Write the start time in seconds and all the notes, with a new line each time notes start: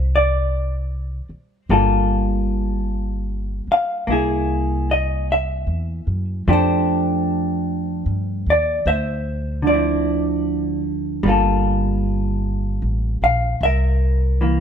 Already playing: C2 G3 C4 C5 E5
0.16 D5
1.29 muted upright bass stroke
1.69 G1 G3 A#3 F4 A4
3.67 muted upright bass stroke
3.72 F5
4.07 C2 A#3 E4
4.12 G#4
4.91 D#5
5.32 E5
5.67 E2
6.07 F#2
6.47 F2 F3 A3 D4 G4 A4
6.53 C5
8.06 G2
8.46 D#2 D5
8.86 D2 C5 E5
9.62 D3
9.67 F3 C4 D5
9.74 E4
11.23 G1 G3 A#3
11.28 F4 A4
12.82 A1
13.22 A#1 F5
13.61 C2 E5
13.65 A#4
14.41 E3 A#3